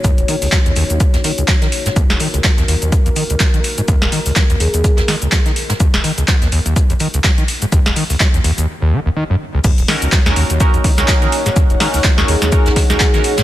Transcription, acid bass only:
X:1
M:4/4
L:1/16
Q:"Swing 16ths" 1/4=125
K:Ebm
V:1 name="Acid bass" clef=bass
E,, E,,, E, D,, G, E,, E,, E,, z E,, E, D,, G, E, z A,, | E,, E,,, E, D,, G, E,, E,, E,, z E,, E, D,, G, E, z A,, | E,, E,,, E, D,, G, E,, E,, E,, z E,, E, D,, G, E, z A,, | E,, E,,, E, D,, G, E,, E,, E,, z E,, E, D,, G, E, z A,, |
E,, E,,, E, D,, G, E,, E,, E,, z E,, E, E,, E, G,, z D,, | E,, E,,, E, D,, G, E,, E,, E,, z E,, E, D,, G, E, z A,, | E,, E,,, E, D,, G, E,, E,, E,, z E,, E, D,, G, E, z A,, |]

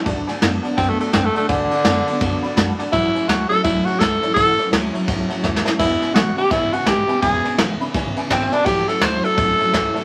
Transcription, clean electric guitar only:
X:1
M:4/4
L:1/8
Q:"Swing" 1/4=168
K:A
V:1 name="Clean electric guitar" clef=bass
[D,A,] [D,A,] [D,B,] [D,B,] [D,B,] [D,B,] [D,A,] [D,A,] | [D,A,] [D,A,] [D,B,] [D,B,] [D,B,] [D,B,] [D,A,] [D,A,] | [A,,E,] [A,,E,] [A,,F,] [A,,F,] [A,,F,] [A,,F,] E, [A,,E,] | [A,,E,] [A,,E,] [A,,F,] [A,,F,] [A,,F,] [A,,F,] [A,,E,] [A,,E,] |
[E,,B,,] [E,,B,,] [E,,C,] [E,,C,] [E,,C,] [E,,C,] [E,,B,,] [E,,B,,] | [E,,B,,] [E,,B,,] [E,,C,] [E,,C,] [E,,C,] [E,,C,] [E,,B,,] [E,,B,,] | [A,,E,] [A,,E,] [A,,F,] [A,,F,] [A,,F,] [A,,F,] [A,,E,] [A,,E,] |]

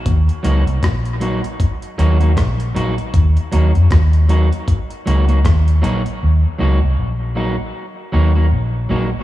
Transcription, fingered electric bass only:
X:1
M:4/4
L:1/16
Q:"Swing 16ths" 1/4=78
K:Ebdor
V:1 name="Fingered electric bass" clef=bass
E,, z D,, C,, B,,,3 z3 E,,2 B,,,2 B,,, z | E,, z E,, F,, E,,3 z3 D,,2 E,,2 B,,, z | E,, z D,, C,, B,,,3 z3 E,,2 B,,,2 B,,, z |]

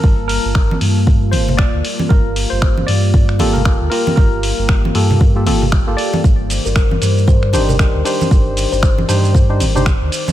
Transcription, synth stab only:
X:1
M:4/4
L:1/16
Q:"Swing 16ths" 1/4=116
K:Gm
V:1 name="Synth stab"
z16 | z8 z2 [B,FGA]2 [B,FGA]2 [B,FGB]2- | [B,FGB]6 [B,FGA]2 z [B,FGA] [B,FGA] z2 [B,FGA]3 | z8 z2 [DEGc]2 [DEGc]2 [DEGc]2- |
[DEGc]6 [DEGc]2 z [DEGc] z [DEGc] z4 |]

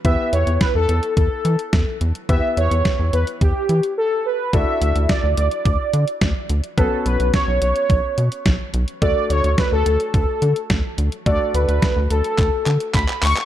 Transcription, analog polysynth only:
X:1
M:4/4
L:1/16
Q:1/4=107
K:Edor
V:1 name="Analog polysynth"
e2 c2 B A3 A6 z2 | e2 c4 B2 G4 A2 B2 | e4 d2 d8 z2 | A2 B2 c2 c8 z2 |
d2 c2 B A3 A6 z2 | d2 B4 A6 b2 c'2 |]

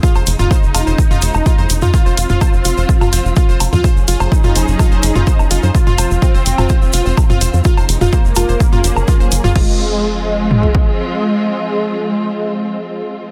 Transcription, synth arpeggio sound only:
X:1
M:4/4
L:1/16
Q:1/4=126
K:Fphr
V:1 name="Synth arpeggio sound"
F c z F c z F c z F c z F c z F | F c z F c z F c z F c z F c z F | c z F c z F c z F c z F c z F c | z F c z F c z F c z F c z F c z |
F c z F c z F c z F c z F c z F | F2 z12 z2 | z16 |]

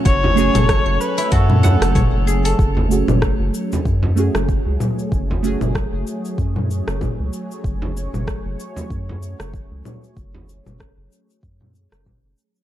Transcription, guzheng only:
X:1
M:4/4
L:1/16
Q:"Swing 16ths" 1/4=95
K:F#m
V:1 name="Guzheng"
c z G A z c2 E F z f2 c z G A | z16 | z16 | z16 |
z16 |]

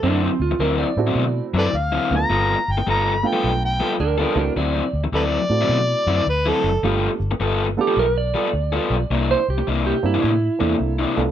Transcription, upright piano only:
X:1
M:4/4
L:1/8
Q:"Swing" 1/4=106
K:Ddor
V:1 name="Upright piano"
z3 [A,CE^F]3 z [A,B,D=F] | z3 [A,B,DF]3 z [A,CE^F] | z3 [A,CE^F]3 z2 | [A,B,DFG] z2 [A,B,DFA] z4 |
z3 [_B,CDEG] z [B,CDEA]2 [A,=B,DFA] |]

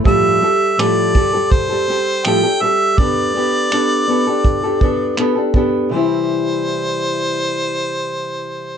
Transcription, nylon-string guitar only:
X:1
M:4/4
L:1/16
Q:1/4=82
K:C
V:1 name="Nylon-string guitar"
[A,,F,G,CGA]2 [G,CGA]2 [A,,F,G,CGA]2 [G,CGA] [G,CGA]2 [G,CGA] [G,CGA]2 [A,,F,G,CGA] [G,CGA] [G,CGA]2 | [B,DGA]2 [B,DGA]2 [B,DGA]2 [B,DGA] [DGA]2 [DGA] [B,DGA]2 [B,DGA] [DGA] [B,DGA]2 | [C,E,G,CEc]16 |]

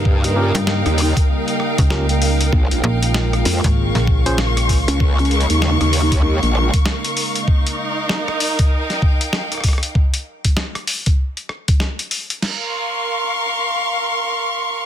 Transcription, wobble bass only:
X:1
M:4/4
L:1/16
Q:"Swing 16ths" 1/4=97
K:Bbdor
V:1 name="Wobble bass" clef=bass
G,,3 z2 E,,2 z8 z | B,,, B,,, z4 F,, z8 D,,- | D,,3 E,,2 E,,4 B,,,2 z4 z | z16 |
z16 | z16 |]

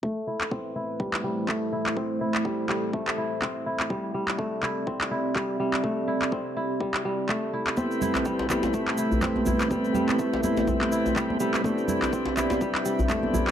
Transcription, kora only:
X:1
M:4/4
L:1/16
Q:"Swing 16ths" 1/4=124
K:Am
V:1 name="Kora"
A,2 E2 C z E2 G,2 G,2 A,2 E2 | C z E2 G,2 G,2 A,2 E2 C z E2 | G,2 G,2 A,2 E2 C z E2 G,2 G,2 | A,2 E2 C z E2 G,2 G,2 A,2 E2 |
C z E2 G,2 G,2 A,2 E2 C z E2 | G,2 G,2 A,2 E2 C z E2 G,2 G,2 | A,2 E2 C z E2 G,2 G,2 A,2 E2 |]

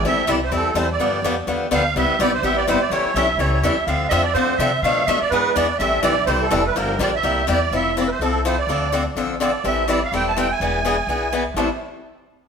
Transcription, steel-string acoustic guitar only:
X:1
M:4/4
L:1/8
Q:"Swing" 1/4=250
K:Am
V:1 name="Steel-string acoustic guitar"
[E,G,CEA] z [E,G,CEA] z [E,G,CEA] z [E,G,CEA] z | [D,F,B,DG] z [D,F,B,DG] z [D,F,B,DG] z [D,F,B,DG] z | [C,G,B,EG] z [C,G,B,EG] z [C,G,B,EG] z [C,G,B,EG] z | [E,G,^CEA] z [E,G,CEA] z [E,G,CEA] z [E,G,CEA] z |
[D,F,CDA] z [D,F,CDA] z [D,F,CDA] z [D,F,CDA] z | [B,,F,A,DA] z [B,,F,A,DA] z [E,B,D^G] z [E,B,DG] z | [E,G,CEA] z [E,G,CEA] z [E,G,CEA] z [E,G,CEA] z | [D,F,_B,DG] z [D,F,B,DG] z [C,G,B,EG] z [C,G,B,EG] z |
[F,CEA] z [F,CEA] z [F,CEA] z [F,CEA] z | [D,F,CDA] z [D,F,CDA] z [D,F,CDA] z [D,F,CDA] z | [E,G,CEA] z [E,G,CEA] z [E,G,CEA] z [E,G,CEA] z | [E,B,D^G] z [E,B,DG] z [E,B,DG] z [E,B,DG] z |
[A,,E,G,CEA] z6 z |]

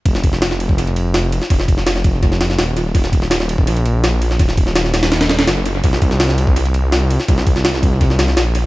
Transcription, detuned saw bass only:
X:1
M:4/4
L:1/8
Q:1/4=166
K:Eb
V:1 name="Detuned saw bass" clef=bass
F,,,6- F,,, z | F,,,6 E,,,2 | E,,,4 B,,,4 | E,,,4- E,,, E,,, _G,,,2 |
C,,6- C,, z | C,,6 B,,,2 |]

